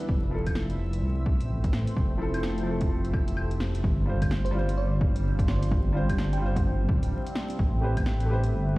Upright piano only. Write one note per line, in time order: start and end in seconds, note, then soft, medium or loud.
0.31 0.76 F3 medium
0.31 0.77 E4 medium
0.31 0.78 A4 medium
2.17 2.61 F3 medium
2.17 2.64 E4 medium
2.22 2.65 A4 loud
2.63 3.81 F3 medium
2.63 3.83 E4 medium
2.71 3.85 A4 loud
4.06 4.49 G3 medium
4.06 4.52 F4 medium
4.06 4.53 C5 medium
4.51 5.91 G3 medium
4.51 5.93 F4 medium
4.59 5.95 C5 loud
5.92 6.36 G3 medium
5.92 6.39 F4 medium
5.97 6.40 C5 loud
6.37 7.56 G3 medium
6.41 7.58 F4 medium
6.46 7.60 C5 loud
7.80 8.24 A3 medium
7.80 8.26 G4 medium
7.80 8.27 B4 medium
7.84 8.28 C5 medium
8.25 8.78 A3 medium
8.25 8.78 G4 medium
8.30 8.78 B4 medium
8.30 8.78 C5 loud